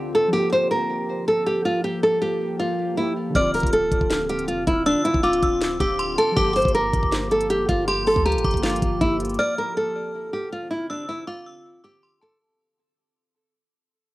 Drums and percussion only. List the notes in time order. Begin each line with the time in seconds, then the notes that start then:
3.35 kick, closed hi-hat
3.54 closed hi-hat, open hi-hat
3.60 kick, closed hi-hat
3.67 closed hi-hat
3.73 closed hi-hat
3.92 kick, closed hi-hat
4.01 kick
4.10 snare, closed hi-hat
4.29 closed hi-hat
4.39 closed hi-hat
4.48 closed hi-hat
4.67 kick, closed hi-hat
4.86 closed hi-hat
5.05 closed hi-hat
5.14 kick
5.24 closed hi-hat
5.33 closed hi-hat
5.43 kick, closed hi-hat
5.61 snare, closed hi-hat
5.80 kick, closed hi-hat
5.99 closed hi-hat
6.18 closed hi-hat
6.37 kick, closed hi-hat
6.56 closed hi-hat, open hi-hat
6.62 kick, closed hi-hat
6.68 closed hi-hat
6.75 closed hi-hat
6.93 kick, closed hi-hat
7.03 kick
7.12 snare, closed hi-hat
7.31 closed hi-hat
7.41 closed hi-hat
7.50 closed hi-hat
7.69 kick, closed hi-hat
7.88 closed hi-hat
8.07 open hi-hat
8.16 kick
8.26 closed hi-hat
8.32 closed hi-hat
8.38 closed hi-hat
8.44 kick, closed hi-hat
8.51 kick, closed hi-hat
8.57 closed hi-hat
8.63 snare, closed hi-hat
8.70 closed hi-hat
8.76 closed hi-hat
8.82 kick, closed hi-hat
9.01 kick, closed hi-hat
9.20 closed hi-hat
9.25 closed hi-hat
9.29 closed hi-hat
9.34 closed hi-hat